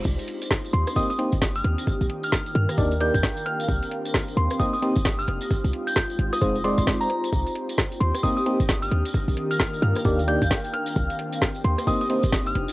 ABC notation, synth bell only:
X:1
M:4/4
L:1/16
Q:"Swing 16ths" 1/4=132
K:Cm
V:1 name="Synth bell"
z6 c'2 e' e' z3 f' z2 | z3 f'3 f' z3 g' g' z2 f'2- | f' z4 z c'2 e' e' z3 f' z2 | z3 g' z3 e'3 c' c' z b3 |
z6 c'2 e' e' z3 f' z2 | z3 f'3 f' z3 g' g' z2 f'2- | f' z4 z c'2 e' e' z3 f' z2 |]